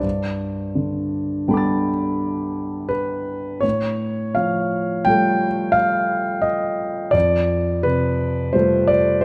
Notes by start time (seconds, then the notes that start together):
Already playing: D5
0.03 G2
0.75 D3
1.48 G3 B3 D4 A4 G5 B5
1.54 D6 A6
2.89 B4
3.61 A2 C#5
4.35 F3 F5
5.05 G3 A3 F4 A4 G5
5.72 F5
6.42 D#5
7.11 F2 D5
7.83 C3 B4
8.53 G3 A3 F4 A4 C5
8.88 D5
9.21 C5